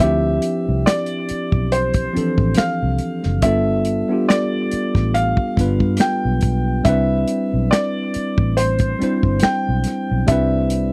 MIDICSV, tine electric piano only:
0, 0, Header, 1, 2, 480
1, 0, Start_track
1, 0, Time_signature, 4, 2, 24, 8
1, 0, Tempo, 857143
1, 6119, End_track
2, 0, Start_track
2, 0, Title_t, "Tine electric piano"
2, 0, Program_c, 0, 4
2, 0, Control_c, 0, 64, 127
2, 0, Note_on_c, 0, 53, 74
2, 0, Note_on_c, 0, 60, 66
2, 0, Note_on_c, 0, 71, 49
2, 0, Note_on_c, 0, 76, 57
2, 5, Note_on_c, 0, 62, 69
2, 6, Control_c, 0, 64, 0
2, 12, Note_on_c, 0, 64, 66
2, 19, Note_on_c, 0, 67, 91
2, 98, Control_c, 0, 64, 127
2, 121, Note_off_c, 0, 76, 0
2, 123, Note_off_c, 0, 71, 0
2, 887, Note_off_c, 0, 53, 0
2, 890, Note_off_c, 0, 60, 0
2, 893, Note_off_c, 0, 62, 0
2, 897, Note_off_c, 0, 64, 0
2, 900, Note_off_c, 0, 67, 0
2, 1192, Note_on_c, 0, 53, 62
2, 1199, Note_on_c, 0, 60, 56
2, 1205, Note_on_c, 0, 62, 55
2, 1212, Note_on_c, 0, 52, 61
2, 1218, Note_on_c, 0, 69, 67
2, 1864, Note_off_c, 0, 53, 0
2, 1868, Note_off_c, 0, 60, 0
2, 1871, Note_off_c, 0, 62, 0
2, 1874, Note_off_c, 0, 52, 0
2, 1877, Note_off_c, 0, 69, 0
2, 1912, Note_on_c, 0, 55, 75
2, 1920, Note_on_c, 0, 59, 75
2, 1926, Control_c, 0, 64, 0
2, 1926, Note_on_c, 0, 62, 67
2, 1933, Note_on_c, 0, 65, 68
2, 1940, Note_on_c, 0, 69, 89
2, 2035, Control_c, 0, 64, 127
2, 2256, Note_off_c, 0, 55, 0
2, 2260, Note_off_c, 0, 59, 0
2, 2263, Note_off_c, 0, 62, 0
2, 2267, Note_off_c, 0, 65, 0
2, 2270, Note_off_c, 0, 69, 0
2, 2287, Note_on_c, 0, 55, 54
2, 2292, Note_on_c, 0, 59, 56
2, 2299, Note_on_c, 0, 62, 57
2, 2305, Note_on_c, 0, 65, 56
2, 2312, Note_on_c, 0, 67, 62
2, 3057, Note_off_c, 0, 55, 0
2, 3059, Note_off_c, 0, 59, 0
2, 3063, Note_off_c, 0, 62, 0
2, 3066, Note_off_c, 0, 65, 0
2, 3069, Note_off_c, 0, 67, 0
2, 3113, Note_on_c, 0, 55, 59
2, 3119, Note_on_c, 0, 59, 60
2, 3127, Note_on_c, 0, 62, 58
2, 3134, Note_on_c, 0, 65, 60
2, 3140, Note_on_c, 0, 71, 76
2, 3785, Note_off_c, 0, 55, 0
2, 3787, Note_off_c, 0, 59, 0
2, 3791, Note_off_c, 0, 62, 0
2, 3795, Note_off_c, 0, 65, 0
2, 3798, Note_off_c, 0, 71, 0
2, 3830, Note_on_c, 0, 55, 75
2, 3837, Note_on_c, 0, 60, 77
2, 3843, Note_on_c, 0, 62, 72
2, 3845, Control_c, 0, 64, 0
2, 3849, Note_on_c, 0, 64, 75
2, 3857, Note_on_c, 0, 71, 86
2, 3950, Control_c, 0, 64, 127
2, 4726, Note_off_c, 0, 55, 0
2, 4729, Note_off_c, 0, 60, 0
2, 4732, Note_off_c, 0, 62, 0
2, 4735, Note_off_c, 0, 64, 0
2, 4739, Note_off_c, 0, 71, 0
2, 5033, Note_on_c, 0, 55, 64
2, 5040, Note_on_c, 0, 60, 61
2, 5046, Note_on_c, 0, 62, 58
2, 5054, Note_on_c, 0, 64, 61
2, 5060, Note_on_c, 0, 72, 78
2, 5704, Note_off_c, 0, 55, 0
2, 5708, Note_off_c, 0, 60, 0
2, 5711, Note_off_c, 0, 62, 0
2, 5715, Note_off_c, 0, 64, 0
2, 5718, Note_off_c, 0, 72, 0
2, 5751, Note_on_c, 0, 55, 84
2, 5759, Note_on_c, 0, 60, 75
2, 5766, Note_on_c, 0, 62, 73
2, 5772, Note_on_c, 0, 64, 68
2, 5778, Note_on_c, 0, 71, 87
2, 6096, Note_off_c, 0, 55, 0
2, 6100, Note_off_c, 0, 60, 0
2, 6103, Note_off_c, 0, 62, 0
2, 6106, Note_off_c, 0, 64, 0
2, 6109, Note_off_c, 0, 71, 0
2, 6119, End_track
0, 0, End_of_file